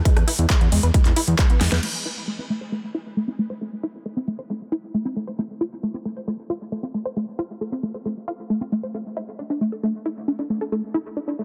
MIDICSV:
0, 0, Header, 1, 4, 480
1, 0, Start_track
1, 0, Key_signature, 0, "minor"
1, 0, Tempo, 444444
1, 59, Time_signature, 4, 2, 24, 8
1, 12361, End_track
2, 0, Start_track
2, 0, Title_t, "Synth arpeggio sound"
2, 0, Program_c, 0, 84
2, 58, Note_on_c, 0, 56, 84
2, 158, Note_off_c, 0, 56, 0
2, 297, Note_on_c, 0, 64, 101
2, 338, Note_off_c, 0, 64, 0
2, 537, Note_on_c, 0, 56, 83
2, 637, Note_off_c, 0, 56, 0
2, 658, Note_on_c, 0, 59, 74
2, 758, Note_off_c, 0, 59, 0
2, 778, Note_on_c, 0, 56, 76
2, 878, Note_off_c, 0, 56, 0
2, 898, Note_on_c, 0, 71, 75
2, 939, Note_off_c, 0, 71, 0
2, 1018, Note_on_c, 0, 56, 83
2, 1118, Note_off_c, 0, 56, 0
2, 1259, Note_on_c, 0, 64, 105
2, 1299, Note_off_c, 0, 64, 0
2, 1498, Note_on_c, 0, 56, 85
2, 1598, Note_off_c, 0, 56, 0
2, 1618, Note_on_c, 0, 59, 78
2, 1718, Note_off_c, 0, 59, 0
2, 1737, Note_on_c, 0, 56, 78
2, 1837, Note_off_c, 0, 56, 0
2, 1857, Note_on_c, 0, 71, 78
2, 1898, Note_off_c, 0, 71, 0
2, 1978, Note_on_c, 0, 57, 81
2, 2078, Note_off_c, 0, 57, 0
2, 2217, Note_on_c, 0, 64, 98
2, 2258, Note_off_c, 0, 64, 0
2, 2457, Note_on_c, 0, 57, 81
2, 2557, Note_off_c, 0, 57, 0
2, 2579, Note_on_c, 0, 60, 72
2, 2678, Note_off_c, 0, 60, 0
2, 2699, Note_on_c, 0, 57, 72
2, 2798, Note_off_c, 0, 57, 0
2, 2820, Note_on_c, 0, 72, 72
2, 2860, Note_off_c, 0, 72, 0
2, 2939, Note_on_c, 0, 57, 78
2, 3038, Note_off_c, 0, 57, 0
2, 3180, Note_on_c, 0, 64, 100
2, 3219, Note_off_c, 0, 64, 0
2, 3421, Note_on_c, 0, 57, 81
2, 3519, Note_off_c, 0, 57, 0
2, 3540, Note_on_c, 0, 60, 74
2, 3639, Note_off_c, 0, 60, 0
2, 3660, Note_on_c, 0, 57, 71
2, 3759, Note_off_c, 0, 57, 0
2, 3780, Note_on_c, 0, 72, 75
2, 3819, Note_off_c, 0, 72, 0
2, 3900, Note_on_c, 0, 57, 77
2, 3999, Note_off_c, 0, 57, 0
2, 4140, Note_on_c, 0, 64, 95
2, 4179, Note_off_c, 0, 64, 0
2, 4381, Note_on_c, 0, 57, 81
2, 4479, Note_off_c, 0, 57, 0
2, 4500, Note_on_c, 0, 60, 74
2, 4599, Note_off_c, 0, 60, 0
2, 4619, Note_on_c, 0, 57, 71
2, 4718, Note_off_c, 0, 57, 0
2, 4739, Note_on_c, 0, 72, 72
2, 4779, Note_off_c, 0, 72, 0
2, 4859, Note_on_c, 0, 57, 80
2, 4958, Note_off_c, 0, 57, 0
2, 5098, Note_on_c, 0, 64, 100
2, 5138, Note_off_c, 0, 64, 0
2, 5338, Note_on_c, 0, 57, 82
2, 5438, Note_off_c, 0, 57, 0
2, 5458, Note_on_c, 0, 60, 76
2, 5558, Note_off_c, 0, 60, 0
2, 5577, Note_on_c, 0, 57, 72
2, 5678, Note_off_c, 0, 57, 0
2, 5696, Note_on_c, 0, 72, 76
2, 5737, Note_off_c, 0, 72, 0
2, 5818, Note_on_c, 0, 57, 82
2, 5918, Note_off_c, 0, 57, 0
2, 6057, Note_on_c, 0, 65, 96
2, 6098, Note_off_c, 0, 65, 0
2, 6298, Note_on_c, 0, 57, 80
2, 6398, Note_off_c, 0, 57, 0
2, 6418, Note_on_c, 0, 60, 72
2, 6518, Note_off_c, 0, 60, 0
2, 6538, Note_on_c, 0, 57, 72
2, 6638, Note_off_c, 0, 57, 0
2, 6659, Note_on_c, 0, 72, 70
2, 6699, Note_off_c, 0, 72, 0
2, 6778, Note_on_c, 0, 57, 82
2, 6878, Note_off_c, 0, 57, 0
2, 7019, Note_on_c, 0, 65, 99
2, 7059, Note_off_c, 0, 65, 0
2, 7258, Note_on_c, 0, 57, 83
2, 7358, Note_off_c, 0, 57, 0
2, 7378, Note_on_c, 0, 60, 73
2, 7478, Note_off_c, 0, 60, 0
2, 7499, Note_on_c, 0, 57, 72
2, 7598, Note_off_c, 0, 57, 0
2, 7619, Note_on_c, 0, 72, 76
2, 7659, Note_off_c, 0, 72, 0
2, 7738, Note_on_c, 0, 57, 80
2, 7838, Note_off_c, 0, 57, 0
2, 7979, Note_on_c, 0, 65, 97
2, 8019, Note_off_c, 0, 65, 0
2, 8220, Note_on_c, 0, 57, 78
2, 8319, Note_off_c, 0, 57, 0
2, 8340, Note_on_c, 0, 60, 72
2, 8439, Note_off_c, 0, 60, 0
2, 8459, Note_on_c, 0, 57, 73
2, 8558, Note_off_c, 0, 57, 0
2, 8580, Note_on_c, 0, 72, 70
2, 8619, Note_off_c, 0, 72, 0
2, 8700, Note_on_c, 0, 57, 79
2, 8799, Note_off_c, 0, 57, 0
2, 8940, Note_on_c, 0, 65, 98
2, 8979, Note_off_c, 0, 65, 0
2, 9179, Note_on_c, 0, 57, 80
2, 9278, Note_off_c, 0, 57, 0
2, 9300, Note_on_c, 0, 60, 74
2, 9399, Note_off_c, 0, 60, 0
2, 9420, Note_on_c, 0, 57, 71
2, 9519, Note_off_c, 0, 57, 0
2, 9540, Note_on_c, 0, 72, 72
2, 9579, Note_off_c, 0, 72, 0
2, 9660, Note_on_c, 0, 57, 78
2, 9759, Note_off_c, 0, 57, 0
2, 9900, Note_on_c, 0, 64, 97
2, 9939, Note_off_c, 0, 64, 0
2, 10141, Note_on_c, 0, 62, 80
2, 10180, Note_off_c, 0, 62, 0
2, 10260, Note_on_c, 0, 62, 73
2, 10359, Note_off_c, 0, 62, 0
2, 10380, Note_on_c, 0, 57, 75
2, 10479, Note_off_c, 0, 57, 0
2, 10500, Note_on_c, 0, 69, 73
2, 10539, Note_off_c, 0, 69, 0
2, 10620, Note_on_c, 0, 57, 81
2, 10719, Note_off_c, 0, 57, 0
2, 10861, Note_on_c, 0, 64, 98
2, 10900, Note_off_c, 0, 64, 0
2, 11101, Note_on_c, 0, 62, 79
2, 11140, Note_off_c, 0, 62, 0
2, 11220, Note_on_c, 0, 62, 73
2, 11319, Note_off_c, 0, 62, 0
2, 11340, Note_on_c, 0, 57, 74
2, 11439, Note_off_c, 0, 57, 0
2, 11461, Note_on_c, 0, 69, 75
2, 11500, Note_off_c, 0, 69, 0
2, 11579, Note_on_c, 0, 57, 81
2, 11678, Note_off_c, 0, 57, 0
2, 11819, Note_on_c, 0, 64, 94
2, 11859, Note_off_c, 0, 64, 0
2, 12060, Note_on_c, 0, 62, 80
2, 12099, Note_off_c, 0, 62, 0
2, 12179, Note_on_c, 0, 62, 73
2, 12278, Note_off_c, 0, 62, 0
2, 12300, Note_on_c, 0, 57, 71
2, 12361, Note_off_c, 0, 57, 0
2, 12361, End_track
3, 0, Start_track
3, 0, Title_t, "Analog synth bass"
3, 0, Program_c, 1, 38
3, 178, Note_on_c, 1, 40, 79
3, 257, Note_off_c, 1, 40, 0
3, 417, Note_on_c, 1, 40, 82
3, 497, Note_off_c, 1, 40, 0
3, 659, Note_on_c, 1, 40, 78
3, 738, Note_off_c, 1, 40, 0
3, 779, Note_on_c, 1, 40, 97
3, 858, Note_off_c, 1, 40, 0
3, 900, Note_on_c, 1, 40, 84
3, 978, Note_off_c, 1, 40, 0
3, 1139, Note_on_c, 1, 40, 80
3, 1218, Note_off_c, 1, 40, 0
3, 1379, Note_on_c, 1, 40, 87
3, 1458, Note_off_c, 1, 40, 0
3, 1738, Note_on_c, 1, 40, 96
3, 1818, Note_off_c, 1, 40, 0
3, 1858, Note_on_c, 1, 40, 85
3, 1938, Note_off_c, 1, 40, 0
3, 12361, End_track
4, 0, Start_track
4, 0, Title_t, "Drums"
4, 58, Note_on_c, 9, 36, 115
4, 59, Note_on_c, 9, 42, 95
4, 166, Note_off_c, 9, 36, 0
4, 167, Note_off_c, 9, 42, 0
4, 179, Note_on_c, 9, 37, 58
4, 179, Note_on_c, 9, 42, 40
4, 287, Note_off_c, 9, 37, 0
4, 287, Note_off_c, 9, 42, 0
4, 299, Note_on_c, 9, 46, 100
4, 407, Note_off_c, 9, 46, 0
4, 419, Note_on_c, 9, 42, 42
4, 527, Note_off_c, 9, 42, 0
4, 538, Note_on_c, 9, 36, 114
4, 539, Note_on_c, 9, 39, 116
4, 539, Note_on_c, 9, 42, 97
4, 646, Note_off_c, 9, 36, 0
4, 647, Note_off_c, 9, 39, 0
4, 647, Note_off_c, 9, 42, 0
4, 658, Note_on_c, 9, 42, 42
4, 766, Note_off_c, 9, 42, 0
4, 779, Note_on_c, 9, 46, 100
4, 887, Note_off_c, 9, 46, 0
4, 899, Note_on_c, 9, 42, 41
4, 1007, Note_off_c, 9, 42, 0
4, 1018, Note_on_c, 9, 36, 116
4, 1018, Note_on_c, 9, 42, 96
4, 1126, Note_off_c, 9, 36, 0
4, 1126, Note_off_c, 9, 42, 0
4, 1138, Note_on_c, 9, 39, 37
4, 1138, Note_on_c, 9, 42, 42
4, 1246, Note_off_c, 9, 39, 0
4, 1246, Note_off_c, 9, 42, 0
4, 1257, Note_on_c, 9, 46, 105
4, 1365, Note_off_c, 9, 46, 0
4, 1377, Note_on_c, 9, 42, 43
4, 1485, Note_off_c, 9, 42, 0
4, 1497, Note_on_c, 9, 39, 115
4, 1497, Note_on_c, 9, 42, 99
4, 1498, Note_on_c, 9, 36, 121
4, 1605, Note_off_c, 9, 39, 0
4, 1605, Note_off_c, 9, 42, 0
4, 1606, Note_off_c, 9, 36, 0
4, 1617, Note_on_c, 9, 42, 42
4, 1725, Note_off_c, 9, 42, 0
4, 1736, Note_on_c, 9, 38, 64
4, 1736, Note_on_c, 9, 46, 105
4, 1844, Note_off_c, 9, 38, 0
4, 1844, Note_off_c, 9, 46, 0
4, 1857, Note_on_c, 9, 38, 73
4, 1857, Note_on_c, 9, 42, 42
4, 1965, Note_off_c, 9, 38, 0
4, 1965, Note_off_c, 9, 42, 0
4, 1977, Note_on_c, 9, 49, 80
4, 2085, Note_off_c, 9, 49, 0
4, 12361, End_track
0, 0, End_of_file